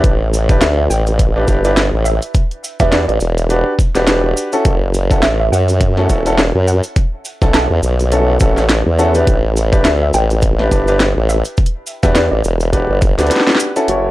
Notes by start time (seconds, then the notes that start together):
Already playing: D4 E4 G4 B4
0.04 A1, kick, closed hi-hat, cabasa
0.34 cabasa
0.49 D4 E4 G4 B4, kick, cabasa
0.61 D2 E5, snare, closed hi-hat, cabasa
0.78 E5
0.90 A1 G5, cabasa
1.07 closed hi-hat, cabasa
1.19 kick, closed hi-hat, cabasa
1.36 D4 E4 G4 B4
1.48 G1 D4 E4 G4 B4, kick, cabasa
1.64 D4 E4 G4 B4, closed hi-hat, cabasa
1.77 snare, closed hi-hat, cabasa
1.93 A1
2.05 E5, cabasa
2.22 closed hi-hat, cabasa
2.34 kick, closed hi-hat, cabasa
2.51 closed hi-hat
2.64 cabasa
2.80 E2 D4 F#4 G4 B4 E5, kick, snare, closed hi-hat, cabasa
2.92 D5, snare, closed hi-hat, cabasa
3.08 A1 D5, closed hi-hat
3.20 E1, cabasa
3.38 closed hi-hat, cabasa
3.50 D4 F#4 G4 B4, closed hi-hat, cabasa
3.79 kick, cabasa
3.95 E1 D4 F#4 G4 B4, snare, closed hi-hat, cabasa
4.07 snare, closed hi-hat, cabasa
4.37 cabasa
4.53 C#4 E4 F#4 A4, closed hi-hat, cabasa
4.65 F#1, kick, closed hi-hat, cabasa
4.94 cabasa
5.11 C#4 E4 F#4 A4, kick, cabasa
5.22 A1 E5, snare, closed hi-hat, cabasa
5.40 E5
5.52 F#2 F#5, cabasa
5.68 closed hi-hat, cabasa
5.81 kick, closed hi-hat, cabasa
5.97 C#4 E4 F#4 A4, snare
6.09 E1 C#4 E4 F#4 A4, kick, cabasa
6.26 C#4 E4 F#4 A4, closed hi-hat, cabasa
6.38 snare, cabasa
6.55 F#2
6.67 F#5, cabasa
6.83 closed hi-hat, cabasa
6.96 kick, closed hi-hat, cabasa
7.25 cabasa
7.42 B1 C#4 E4 F#4 A4, kick, snare, cabasa
7.54 A5, snare, closed hi-hat, cabasa
7.70 E2
7.83 B1, cabasa
7.99 closed hi-hat, cabasa
8.12 C#4 E4 F#4 A4, closed hi-hat, cabasa
8.40 A1 C#4 E4 F#4 A4, kick, cabasa
8.57 snare, cabasa
8.69 snare, closed hi-hat, cabasa
8.86 E2
8.98 C#4 E4 F#4 A4, cabasa
9.15 D4 E4 G4 B4, closed hi-hat, cabasa
9.27 A1, kick, closed hi-hat, cabasa
9.56 cabasa
9.73 D4 E4 G4 B4, kick, cabasa
9.85 D2 E5, snare, closed hi-hat, cabasa
10.02 E5
10.14 A1 G5, cabasa
10.30 closed hi-hat, cabasa
10.42 kick, closed hi-hat, cabasa
10.59 D4 E4 G4 B4, snare
10.71 G1 D4 E4 G4 B4, kick, cabasa
10.88 D4 E4 G4 B4, closed hi-hat, cabasa
11.00 snare, closed hi-hat, cabasa
11.17 A1
11.29 E5, cabasa
11.45 closed hi-hat, cabasa
11.57 kick, cabasa
11.66 closed hi-hat
11.87 cabasa
12.03 E2 D4 F#4 G4 B4 E5, kick, snare, cabasa
12.15 D5, snare, closed hi-hat, cabasa
12.31 A1 D5
12.44 E1, cabasa
12.60 closed hi-hat, cabasa
12.73 D4 F#4 G4 B4, kick, closed hi-hat, cabasa
12.90 G1
13.02 kick, cabasa
13.18 D2 D4 F#4 G4 B4, snare, closed hi-hat, cabasa
13.27 closed hi-hat
13.31 snare, closed hi-hat, cabasa
13.36 snare, closed hi-hat
13.40 snare
13.47 snare, closed hi-hat
13.50 snare
13.55 snare
13.60 cabasa
13.76 C#4 E4 F#4 A4, closed hi-hat, cabasa
13.88 F#1 E4 F#4 A4 C#5, closed hi-hat